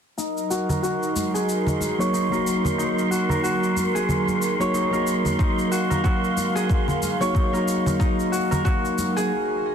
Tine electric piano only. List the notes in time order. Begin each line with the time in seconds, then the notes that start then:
1.99 F#3 A#3 D#4 F#4
2.30 F#3 A#3 D#4 F#4
4.59 F#3 A#3 D#4 F#4
4.91 F#3 A#3 D#4 F#4
7.20 F#3 A#3 D#4 F#4
7.52 F#3 A#3 D#4
7.56 F#4